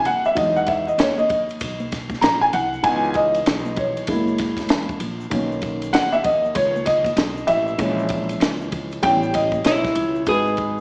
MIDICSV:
0, 0, Header, 1, 6, 480
1, 0, Start_track
1, 0, Tempo, 618557
1, 285, Time_signature, 4, 2, 24, 8
1, 8384, End_track
2, 0, Start_track
2, 0, Title_t, "Upright piano"
2, 0, Program_c, 0, 0
2, 48, Note_on_c, 0, 78, 95
2, 190, Note_off_c, 0, 78, 0
2, 200, Note_on_c, 0, 76, 88
2, 272, Note_on_c, 0, 54, 54
2, 278, Note_on_c, 0, 56, 48
2, 283, Note_on_c, 0, 75, 102
2, 284, Note_on_c, 0, 63, 63
2, 288, Note_off_c, 0, 76, 0
2, 437, Note_on_c, 0, 78, 93
2, 442, Note_off_c, 0, 75, 0
2, 524, Note_on_c, 0, 76, 84
2, 527, Note_off_c, 0, 78, 0
2, 623, Note_off_c, 0, 54, 0
2, 626, Note_off_c, 0, 56, 0
2, 629, Note_off_c, 0, 63, 0
2, 677, Note_on_c, 0, 75, 84
2, 683, Note_off_c, 0, 76, 0
2, 766, Note_on_c, 0, 73, 90
2, 767, Note_off_c, 0, 75, 0
2, 909, Note_off_c, 0, 73, 0
2, 913, Note_on_c, 0, 75, 97
2, 1365, Note_off_c, 0, 75, 0
2, 1718, Note_on_c, 0, 82, 105
2, 1873, Note_on_c, 0, 80, 99
2, 1880, Note_off_c, 0, 82, 0
2, 1911, Note_off_c, 0, 80, 0
2, 1965, Note_on_c, 0, 78, 98
2, 2193, Note_on_c, 0, 52, 57
2, 2200, Note_on_c, 0, 59, 53
2, 2200, Note_on_c, 0, 80, 105
2, 2207, Note_on_c, 0, 63, 65
2, 2212, Note_off_c, 0, 78, 0
2, 2425, Note_off_c, 0, 80, 0
2, 2443, Note_on_c, 0, 75, 113
2, 2929, Note_on_c, 0, 73, 79
2, 2939, Note_off_c, 0, 75, 0
2, 3128, Note_off_c, 0, 52, 0
2, 3132, Note_off_c, 0, 59, 0
2, 3135, Note_off_c, 0, 63, 0
2, 3163, Note_on_c, 0, 56, 55
2, 3168, Note_on_c, 0, 58, 52
2, 3173, Note_on_c, 0, 64, 70
2, 3616, Note_off_c, 0, 73, 0
2, 3853, Note_off_c, 0, 56, 0
2, 3856, Note_off_c, 0, 58, 0
2, 3858, Note_off_c, 0, 64, 0
2, 4114, Note_on_c, 0, 51, 60
2, 4121, Note_on_c, 0, 58, 52
2, 4122, Note_on_c, 0, 61, 65
2, 4601, Note_on_c, 0, 78, 109
2, 4753, Note_on_c, 0, 76, 99
2, 4762, Note_off_c, 0, 78, 0
2, 4792, Note_off_c, 0, 76, 0
2, 4839, Note_on_c, 0, 75, 104
2, 5081, Note_on_c, 0, 73, 102
2, 5090, Note_off_c, 0, 75, 0
2, 5306, Note_off_c, 0, 73, 0
2, 5319, Note_on_c, 0, 75, 100
2, 5798, Note_on_c, 0, 76, 97
2, 5817, Note_off_c, 0, 75, 0
2, 6009, Note_off_c, 0, 51, 0
2, 6012, Note_off_c, 0, 58, 0
2, 6013, Note_off_c, 0, 61, 0
2, 6038, Note_on_c, 0, 52, 59
2, 6043, Note_on_c, 0, 56, 54
2, 6047, Note_on_c, 0, 61, 65
2, 6490, Note_off_c, 0, 76, 0
2, 6970, Note_off_c, 0, 52, 0
2, 6973, Note_off_c, 0, 56, 0
2, 6975, Note_off_c, 0, 61, 0
2, 7001, Note_on_c, 0, 55, 55
2, 7005, Note_on_c, 0, 79, 119
2, 7006, Note_on_c, 0, 59, 55
2, 7010, Note_on_c, 0, 61, 68
2, 7228, Note_off_c, 0, 79, 0
2, 7246, Note_on_c, 0, 75, 99
2, 7485, Note_on_c, 0, 73, 83
2, 7493, Note_off_c, 0, 75, 0
2, 7932, Note_off_c, 0, 55, 0
2, 7934, Note_off_c, 0, 73, 0
2, 7935, Note_off_c, 0, 59, 0
2, 7937, Note_off_c, 0, 61, 0
2, 7968, Note_on_c, 0, 56, 69
2, 7972, Note_on_c, 0, 63, 63
2, 7977, Note_on_c, 0, 66, 67
2, 7978, Note_on_c, 0, 71, 82
2, 8384, Note_off_c, 0, 56, 0
2, 8384, Note_off_c, 0, 63, 0
2, 8384, Note_off_c, 0, 66, 0
2, 8384, Note_off_c, 0, 71, 0
2, 8384, End_track
3, 0, Start_track
3, 0, Title_t, "Hollow-body jazz guitar"
3, 0, Program_c, 1, 26
3, 7501, Note_on_c, 1, 64, 93
3, 7942, Note_off_c, 1, 64, 0
3, 7982, Note_on_c, 1, 68, 99
3, 8384, Note_off_c, 1, 68, 0
3, 8384, End_track
4, 0, Start_track
4, 0, Title_t, "Upright bass"
4, 0, Program_c, 2, 32
4, 41, Note_on_c, 2, 39, 85
4, 271, Note_off_c, 2, 39, 0
4, 283, Note_on_c, 2, 40, 116
4, 740, Note_off_c, 2, 40, 0
4, 759, Note_on_c, 2, 39, 85
4, 1218, Note_off_c, 2, 39, 0
4, 1249, Note_on_c, 2, 35, 92
4, 1703, Note_off_c, 2, 35, 0
4, 1725, Note_on_c, 2, 34, 99
4, 1953, Note_off_c, 2, 34, 0
4, 1969, Note_on_c, 2, 36, 95
4, 2195, Note_off_c, 2, 36, 0
4, 2203, Note_on_c, 2, 37, 112
4, 2660, Note_off_c, 2, 37, 0
4, 2687, Note_on_c, 2, 35, 96
4, 3060, Note_off_c, 2, 35, 0
4, 3167, Note_on_c, 2, 30, 101
4, 3641, Note_off_c, 2, 30, 0
4, 3641, Note_on_c, 2, 28, 99
4, 3871, Note_off_c, 2, 28, 0
4, 3879, Note_on_c, 2, 34, 94
4, 4110, Note_off_c, 2, 34, 0
4, 4122, Note_on_c, 2, 35, 112
4, 4579, Note_off_c, 2, 35, 0
4, 4602, Note_on_c, 2, 39, 88
4, 5060, Note_off_c, 2, 39, 0
4, 5089, Note_on_c, 2, 37, 108
4, 5543, Note_off_c, 2, 37, 0
4, 5560, Note_on_c, 2, 35, 106
4, 5790, Note_off_c, 2, 35, 0
4, 5798, Note_on_c, 2, 33, 87
4, 6029, Note_off_c, 2, 33, 0
4, 6043, Note_on_c, 2, 34, 114
4, 6500, Note_off_c, 2, 34, 0
4, 6518, Note_on_c, 2, 37, 92
4, 6978, Note_off_c, 2, 37, 0
4, 7011, Note_on_c, 2, 33, 124
4, 7464, Note_off_c, 2, 33, 0
4, 7486, Note_on_c, 2, 35, 99
4, 7713, Note_off_c, 2, 35, 0
4, 7721, Note_on_c, 2, 37, 90
4, 7951, Note_off_c, 2, 37, 0
4, 7967, Note_on_c, 2, 32, 98
4, 8384, Note_off_c, 2, 32, 0
4, 8384, End_track
5, 0, Start_track
5, 0, Title_t, "Muted upright bass strokes"
5, 3077, Note_on_c, 9, 29, 47
5, 3154, Note_off_c, 9, 29, 0
5, 8384, End_track
6, 0, Start_track
6, 0, Title_t, "Drums"
6, 40, Note_on_c, 9, 51, 53
6, 43, Note_on_c, 9, 64, 63
6, 43, Note_on_c, 9, 82, 48
6, 117, Note_off_c, 9, 51, 0
6, 121, Note_off_c, 9, 64, 0
6, 121, Note_off_c, 9, 82, 0
6, 193, Note_on_c, 9, 82, 43
6, 270, Note_off_c, 9, 82, 0
6, 279, Note_on_c, 9, 82, 64
6, 284, Note_on_c, 9, 51, 71
6, 285, Note_on_c, 9, 36, 110
6, 357, Note_off_c, 9, 82, 0
6, 361, Note_off_c, 9, 51, 0
6, 363, Note_off_c, 9, 36, 0
6, 435, Note_on_c, 9, 82, 43
6, 512, Note_off_c, 9, 82, 0
6, 516, Note_on_c, 9, 51, 48
6, 519, Note_on_c, 9, 82, 40
6, 528, Note_on_c, 9, 36, 87
6, 594, Note_off_c, 9, 51, 0
6, 597, Note_off_c, 9, 82, 0
6, 605, Note_off_c, 9, 36, 0
6, 683, Note_on_c, 9, 82, 48
6, 761, Note_off_c, 9, 82, 0
6, 765, Note_on_c, 9, 44, 61
6, 765, Note_on_c, 9, 51, 81
6, 767, Note_on_c, 9, 63, 46
6, 767, Note_on_c, 9, 82, 63
6, 775, Note_on_c, 9, 38, 121
6, 843, Note_off_c, 9, 44, 0
6, 843, Note_off_c, 9, 51, 0
6, 845, Note_off_c, 9, 63, 0
6, 845, Note_off_c, 9, 82, 0
6, 852, Note_off_c, 9, 38, 0
6, 916, Note_on_c, 9, 63, 61
6, 916, Note_on_c, 9, 82, 40
6, 993, Note_off_c, 9, 63, 0
6, 993, Note_off_c, 9, 82, 0
6, 1004, Note_on_c, 9, 64, 67
6, 1004, Note_on_c, 9, 82, 46
6, 1007, Note_on_c, 9, 51, 50
6, 1010, Note_on_c, 9, 36, 86
6, 1082, Note_off_c, 9, 64, 0
6, 1082, Note_off_c, 9, 82, 0
6, 1084, Note_off_c, 9, 51, 0
6, 1087, Note_off_c, 9, 36, 0
6, 1156, Note_on_c, 9, 82, 43
6, 1168, Note_on_c, 9, 51, 33
6, 1233, Note_off_c, 9, 82, 0
6, 1239, Note_on_c, 9, 82, 58
6, 1246, Note_off_c, 9, 51, 0
6, 1248, Note_on_c, 9, 51, 82
6, 1250, Note_on_c, 9, 36, 89
6, 1316, Note_off_c, 9, 82, 0
6, 1325, Note_off_c, 9, 51, 0
6, 1328, Note_off_c, 9, 36, 0
6, 1396, Note_on_c, 9, 63, 71
6, 1396, Note_on_c, 9, 82, 50
6, 1473, Note_off_c, 9, 63, 0
6, 1473, Note_off_c, 9, 82, 0
6, 1486, Note_on_c, 9, 82, 44
6, 1490, Note_on_c, 9, 51, 63
6, 1495, Note_on_c, 9, 36, 94
6, 1498, Note_on_c, 9, 38, 35
6, 1564, Note_off_c, 9, 82, 0
6, 1568, Note_off_c, 9, 51, 0
6, 1572, Note_off_c, 9, 36, 0
6, 1576, Note_off_c, 9, 38, 0
6, 1627, Note_on_c, 9, 36, 88
6, 1633, Note_on_c, 9, 63, 68
6, 1633, Note_on_c, 9, 82, 48
6, 1656, Note_on_c, 9, 38, 32
6, 1704, Note_off_c, 9, 36, 0
6, 1710, Note_off_c, 9, 63, 0
6, 1710, Note_off_c, 9, 82, 0
6, 1725, Note_on_c, 9, 44, 55
6, 1725, Note_on_c, 9, 51, 70
6, 1727, Note_on_c, 9, 82, 66
6, 1734, Note_off_c, 9, 38, 0
6, 1736, Note_on_c, 9, 38, 107
6, 1802, Note_off_c, 9, 44, 0
6, 1802, Note_off_c, 9, 51, 0
6, 1804, Note_off_c, 9, 82, 0
6, 1814, Note_off_c, 9, 38, 0
6, 1879, Note_on_c, 9, 82, 47
6, 1957, Note_off_c, 9, 82, 0
6, 1963, Note_on_c, 9, 51, 61
6, 1964, Note_on_c, 9, 64, 72
6, 1964, Note_on_c, 9, 82, 49
6, 2040, Note_off_c, 9, 51, 0
6, 2042, Note_off_c, 9, 64, 0
6, 2042, Note_off_c, 9, 82, 0
6, 2119, Note_on_c, 9, 82, 43
6, 2196, Note_off_c, 9, 82, 0
6, 2200, Note_on_c, 9, 51, 75
6, 2202, Note_on_c, 9, 82, 65
6, 2204, Note_on_c, 9, 36, 117
6, 2278, Note_off_c, 9, 51, 0
6, 2280, Note_off_c, 9, 82, 0
6, 2282, Note_off_c, 9, 36, 0
6, 2361, Note_on_c, 9, 82, 44
6, 2435, Note_on_c, 9, 51, 47
6, 2438, Note_off_c, 9, 82, 0
6, 2445, Note_on_c, 9, 82, 44
6, 2447, Note_on_c, 9, 36, 89
6, 2513, Note_off_c, 9, 51, 0
6, 2523, Note_off_c, 9, 82, 0
6, 2525, Note_off_c, 9, 36, 0
6, 2595, Note_on_c, 9, 51, 43
6, 2604, Note_on_c, 9, 82, 52
6, 2673, Note_off_c, 9, 51, 0
6, 2681, Note_off_c, 9, 82, 0
6, 2686, Note_on_c, 9, 44, 55
6, 2686, Note_on_c, 9, 51, 82
6, 2690, Note_on_c, 9, 63, 50
6, 2690, Note_on_c, 9, 82, 67
6, 2696, Note_on_c, 9, 38, 126
6, 2763, Note_off_c, 9, 44, 0
6, 2763, Note_off_c, 9, 51, 0
6, 2767, Note_off_c, 9, 63, 0
6, 2767, Note_off_c, 9, 82, 0
6, 2773, Note_off_c, 9, 38, 0
6, 2835, Note_on_c, 9, 63, 63
6, 2835, Note_on_c, 9, 82, 46
6, 2912, Note_off_c, 9, 63, 0
6, 2912, Note_off_c, 9, 82, 0
6, 2921, Note_on_c, 9, 51, 51
6, 2924, Note_on_c, 9, 64, 60
6, 2924, Note_on_c, 9, 82, 43
6, 2928, Note_on_c, 9, 36, 87
6, 2998, Note_off_c, 9, 51, 0
6, 3002, Note_off_c, 9, 64, 0
6, 3002, Note_off_c, 9, 82, 0
6, 3005, Note_off_c, 9, 36, 0
6, 3079, Note_on_c, 9, 82, 43
6, 3080, Note_on_c, 9, 51, 36
6, 3157, Note_off_c, 9, 82, 0
6, 3158, Note_off_c, 9, 51, 0
6, 3159, Note_on_c, 9, 51, 79
6, 3164, Note_on_c, 9, 82, 58
6, 3167, Note_on_c, 9, 36, 90
6, 3237, Note_off_c, 9, 51, 0
6, 3241, Note_off_c, 9, 82, 0
6, 3245, Note_off_c, 9, 36, 0
6, 3322, Note_on_c, 9, 63, 77
6, 3322, Note_on_c, 9, 82, 50
6, 3400, Note_off_c, 9, 63, 0
6, 3400, Note_off_c, 9, 82, 0
6, 3401, Note_on_c, 9, 51, 69
6, 3408, Note_on_c, 9, 38, 35
6, 3411, Note_on_c, 9, 36, 91
6, 3413, Note_on_c, 9, 82, 45
6, 3478, Note_off_c, 9, 51, 0
6, 3486, Note_off_c, 9, 38, 0
6, 3489, Note_off_c, 9, 36, 0
6, 3490, Note_off_c, 9, 82, 0
6, 3544, Note_on_c, 9, 36, 82
6, 3550, Note_on_c, 9, 51, 48
6, 3561, Note_on_c, 9, 63, 66
6, 3561, Note_on_c, 9, 82, 47
6, 3567, Note_on_c, 9, 38, 32
6, 3621, Note_off_c, 9, 36, 0
6, 3627, Note_off_c, 9, 51, 0
6, 3638, Note_off_c, 9, 63, 0
6, 3638, Note_off_c, 9, 82, 0
6, 3638, Note_on_c, 9, 44, 53
6, 3638, Note_on_c, 9, 51, 74
6, 3645, Note_off_c, 9, 38, 0
6, 3649, Note_on_c, 9, 38, 113
6, 3652, Note_on_c, 9, 82, 62
6, 3715, Note_off_c, 9, 44, 0
6, 3715, Note_off_c, 9, 51, 0
6, 3727, Note_off_c, 9, 38, 0
6, 3730, Note_off_c, 9, 82, 0
6, 3796, Note_on_c, 9, 36, 96
6, 3801, Note_on_c, 9, 82, 48
6, 3874, Note_off_c, 9, 36, 0
6, 3879, Note_off_c, 9, 82, 0
6, 3879, Note_on_c, 9, 51, 58
6, 3883, Note_on_c, 9, 64, 63
6, 3883, Note_on_c, 9, 82, 45
6, 3957, Note_off_c, 9, 51, 0
6, 3961, Note_off_c, 9, 64, 0
6, 3961, Note_off_c, 9, 82, 0
6, 4039, Note_on_c, 9, 82, 46
6, 4116, Note_off_c, 9, 82, 0
6, 4122, Note_on_c, 9, 51, 81
6, 4122, Note_on_c, 9, 82, 60
6, 4124, Note_on_c, 9, 36, 110
6, 4200, Note_off_c, 9, 51, 0
6, 4200, Note_off_c, 9, 82, 0
6, 4202, Note_off_c, 9, 36, 0
6, 4282, Note_on_c, 9, 82, 48
6, 4358, Note_on_c, 9, 51, 48
6, 4360, Note_off_c, 9, 82, 0
6, 4365, Note_on_c, 9, 82, 45
6, 4367, Note_on_c, 9, 36, 90
6, 4436, Note_off_c, 9, 51, 0
6, 4443, Note_off_c, 9, 82, 0
6, 4445, Note_off_c, 9, 36, 0
6, 4514, Note_on_c, 9, 51, 42
6, 4527, Note_on_c, 9, 82, 58
6, 4592, Note_off_c, 9, 51, 0
6, 4605, Note_off_c, 9, 82, 0
6, 4606, Note_on_c, 9, 44, 62
6, 4606, Note_on_c, 9, 51, 88
6, 4615, Note_on_c, 9, 63, 52
6, 4615, Note_on_c, 9, 82, 66
6, 4616, Note_on_c, 9, 38, 117
6, 4684, Note_off_c, 9, 44, 0
6, 4684, Note_off_c, 9, 51, 0
6, 4692, Note_off_c, 9, 63, 0
6, 4692, Note_off_c, 9, 82, 0
6, 4693, Note_off_c, 9, 38, 0
6, 4758, Note_on_c, 9, 63, 66
6, 4758, Note_on_c, 9, 82, 43
6, 4836, Note_off_c, 9, 63, 0
6, 4836, Note_off_c, 9, 82, 0
6, 4844, Note_on_c, 9, 51, 57
6, 4848, Note_on_c, 9, 36, 90
6, 4848, Note_on_c, 9, 64, 65
6, 4848, Note_on_c, 9, 82, 48
6, 4922, Note_off_c, 9, 51, 0
6, 4926, Note_off_c, 9, 36, 0
6, 4926, Note_off_c, 9, 64, 0
6, 4926, Note_off_c, 9, 82, 0
6, 5000, Note_on_c, 9, 82, 39
6, 5078, Note_off_c, 9, 82, 0
6, 5083, Note_on_c, 9, 51, 84
6, 5083, Note_on_c, 9, 82, 59
6, 5088, Note_on_c, 9, 36, 93
6, 5160, Note_off_c, 9, 51, 0
6, 5161, Note_off_c, 9, 82, 0
6, 5166, Note_off_c, 9, 36, 0
6, 5246, Note_on_c, 9, 63, 71
6, 5246, Note_on_c, 9, 82, 52
6, 5323, Note_off_c, 9, 63, 0
6, 5323, Note_off_c, 9, 82, 0
6, 5323, Note_on_c, 9, 51, 70
6, 5330, Note_on_c, 9, 38, 35
6, 5332, Note_on_c, 9, 82, 44
6, 5333, Note_on_c, 9, 36, 97
6, 5400, Note_off_c, 9, 51, 0
6, 5408, Note_off_c, 9, 38, 0
6, 5409, Note_off_c, 9, 82, 0
6, 5410, Note_off_c, 9, 36, 0
6, 5466, Note_on_c, 9, 36, 80
6, 5477, Note_on_c, 9, 63, 73
6, 5477, Note_on_c, 9, 82, 46
6, 5478, Note_on_c, 9, 51, 46
6, 5544, Note_off_c, 9, 36, 0
6, 5555, Note_off_c, 9, 63, 0
6, 5555, Note_off_c, 9, 82, 0
6, 5556, Note_off_c, 9, 51, 0
6, 5562, Note_on_c, 9, 44, 54
6, 5562, Note_on_c, 9, 51, 69
6, 5573, Note_on_c, 9, 38, 102
6, 5573, Note_on_c, 9, 82, 66
6, 5639, Note_off_c, 9, 44, 0
6, 5639, Note_off_c, 9, 51, 0
6, 5651, Note_off_c, 9, 38, 0
6, 5651, Note_off_c, 9, 82, 0
6, 5719, Note_on_c, 9, 82, 49
6, 5797, Note_off_c, 9, 82, 0
6, 5801, Note_on_c, 9, 51, 56
6, 5808, Note_on_c, 9, 64, 73
6, 5808, Note_on_c, 9, 82, 51
6, 5879, Note_off_c, 9, 51, 0
6, 5885, Note_off_c, 9, 64, 0
6, 5885, Note_off_c, 9, 82, 0
6, 5956, Note_on_c, 9, 82, 45
6, 6034, Note_off_c, 9, 82, 0
6, 6042, Note_on_c, 9, 51, 76
6, 6043, Note_on_c, 9, 82, 64
6, 6045, Note_on_c, 9, 36, 108
6, 6120, Note_off_c, 9, 51, 0
6, 6120, Note_off_c, 9, 82, 0
6, 6122, Note_off_c, 9, 36, 0
6, 6199, Note_on_c, 9, 82, 46
6, 6275, Note_on_c, 9, 51, 50
6, 6277, Note_off_c, 9, 82, 0
6, 6285, Note_on_c, 9, 82, 47
6, 6287, Note_on_c, 9, 36, 95
6, 6353, Note_off_c, 9, 51, 0
6, 6362, Note_off_c, 9, 82, 0
6, 6365, Note_off_c, 9, 36, 0
6, 6434, Note_on_c, 9, 51, 44
6, 6443, Note_on_c, 9, 82, 54
6, 6511, Note_off_c, 9, 51, 0
6, 6520, Note_off_c, 9, 82, 0
6, 6527, Note_on_c, 9, 44, 58
6, 6527, Note_on_c, 9, 51, 81
6, 6533, Note_on_c, 9, 63, 49
6, 6533, Note_on_c, 9, 82, 67
6, 6536, Note_on_c, 9, 38, 123
6, 6604, Note_off_c, 9, 44, 0
6, 6604, Note_off_c, 9, 51, 0
6, 6611, Note_off_c, 9, 63, 0
6, 6611, Note_off_c, 9, 82, 0
6, 6614, Note_off_c, 9, 38, 0
6, 6682, Note_on_c, 9, 82, 44
6, 6759, Note_off_c, 9, 82, 0
6, 6766, Note_on_c, 9, 51, 54
6, 6767, Note_on_c, 9, 64, 66
6, 6767, Note_on_c, 9, 82, 48
6, 6770, Note_on_c, 9, 36, 88
6, 6844, Note_off_c, 9, 51, 0
6, 6844, Note_off_c, 9, 64, 0
6, 6844, Note_off_c, 9, 82, 0
6, 6847, Note_off_c, 9, 36, 0
6, 6918, Note_on_c, 9, 82, 39
6, 6925, Note_on_c, 9, 51, 37
6, 6996, Note_off_c, 9, 82, 0
6, 7003, Note_off_c, 9, 51, 0
6, 7005, Note_on_c, 9, 82, 56
6, 7006, Note_on_c, 9, 51, 79
6, 7011, Note_on_c, 9, 36, 86
6, 7082, Note_off_c, 9, 82, 0
6, 7084, Note_off_c, 9, 51, 0
6, 7088, Note_off_c, 9, 36, 0
6, 7160, Note_on_c, 9, 82, 55
6, 7238, Note_off_c, 9, 82, 0
6, 7246, Note_on_c, 9, 51, 69
6, 7254, Note_on_c, 9, 82, 48
6, 7255, Note_on_c, 9, 36, 96
6, 7324, Note_off_c, 9, 51, 0
6, 7332, Note_off_c, 9, 36, 0
6, 7332, Note_off_c, 9, 82, 0
6, 7387, Note_on_c, 9, 36, 89
6, 7397, Note_on_c, 9, 63, 71
6, 7397, Note_on_c, 9, 82, 50
6, 7465, Note_off_c, 9, 36, 0
6, 7475, Note_off_c, 9, 63, 0
6, 7475, Note_off_c, 9, 82, 0
6, 7484, Note_on_c, 9, 44, 51
6, 7484, Note_on_c, 9, 51, 79
6, 7493, Note_on_c, 9, 82, 67
6, 7495, Note_on_c, 9, 38, 99
6, 7561, Note_off_c, 9, 44, 0
6, 7561, Note_off_c, 9, 51, 0
6, 7571, Note_off_c, 9, 82, 0
6, 7573, Note_off_c, 9, 38, 0
6, 7640, Note_on_c, 9, 36, 102
6, 7643, Note_on_c, 9, 82, 48
6, 7648, Note_on_c, 9, 38, 37
6, 7718, Note_off_c, 9, 36, 0
6, 7720, Note_off_c, 9, 82, 0
6, 7723, Note_on_c, 9, 64, 68
6, 7723, Note_on_c, 9, 82, 44
6, 7724, Note_on_c, 9, 51, 60
6, 7726, Note_off_c, 9, 38, 0
6, 7800, Note_off_c, 9, 64, 0
6, 7800, Note_off_c, 9, 82, 0
6, 7802, Note_off_c, 9, 51, 0
6, 7878, Note_on_c, 9, 82, 48
6, 7955, Note_off_c, 9, 82, 0
6, 7961, Note_on_c, 9, 82, 60
6, 7965, Note_on_c, 9, 51, 74
6, 7968, Note_on_c, 9, 36, 98
6, 8039, Note_off_c, 9, 82, 0
6, 8043, Note_off_c, 9, 51, 0
6, 8045, Note_off_c, 9, 36, 0
6, 8121, Note_on_c, 9, 82, 46
6, 8199, Note_off_c, 9, 82, 0
6, 8202, Note_on_c, 9, 51, 43
6, 8208, Note_on_c, 9, 82, 40
6, 8211, Note_on_c, 9, 36, 79
6, 8279, Note_off_c, 9, 51, 0
6, 8286, Note_off_c, 9, 82, 0
6, 8289, Note_off_c, 9, 36, 0
6, 8384, End_track
0, 0, End_of_file